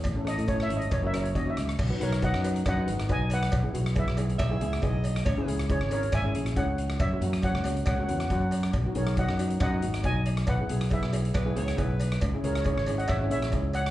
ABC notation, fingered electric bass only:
X:1
M:4/4
L:1/16
Q:"Swing 16ths" 1/4=138
K:F#dor
V:1 name="Fingered electric bass" clef=bass
A,,,3 A,,3 G,,,2 F,,,4 D,,2 C,,2 | [K:B] B,,, z B,,,3 F,,3 F,,2 G,,,2 B,,,4 | B,,, z B,,,3 B,,,3 B,,,2 C,,2 B,,,4 | C,, z C,,3 G,,,3 G,,,2 A,,,2 C,,4 |
F,, z F,,3 C,,3 C,,2 E,,2 F,,4 | B,,, z B,,,3 F,,3 F,,2 G,,,2 B,,,4 | B,,, z B,,,3 B,,,3 B,,,2 C,,2 B,,,4 | C,, z C,,3 G,,,3 G,,,2 A,,,2 C,,4 |]